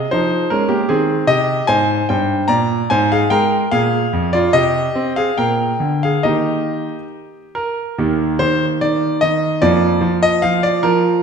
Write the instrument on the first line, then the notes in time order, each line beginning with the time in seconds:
grand piano
Already playing: D#5
0.11 F3 D#4 C5
0.50 G#3 C#4 A#4
0.69 A#3 G4
0.89 D#3 C4 G#4
1.27 C3 G4 D#5
1.67 G#2 C5 G#5
2.09 G2 C5 G5
2.48 A#2 D5 A#5
2.90 G#2 C5 G#5
3.12 G#4 F5
3.30 G#3 A#4 G5
3.71 A#2 G#4 F5
4.13 F2
4.33 F4 D5
4.53 C3 G4 D#5
4.95 C4
5.16 G#4 F5
5.38 A#2 A#4 G5
5.80 D3
6.03 G#4 F5
6.23 D#3 A#3 D#4 G4 D#5
7.55 A#4
7.98 D#2 D#3 A#3 G4
8.39 D#3 C5
8.81 D#3 D5
9.21 D#3 D#5
9.62 F2 F3 A#3 F4 D5
10.01 F3
10.23 D#5
10.42 F3 F5
10.63 D5
10.83 F3 A#4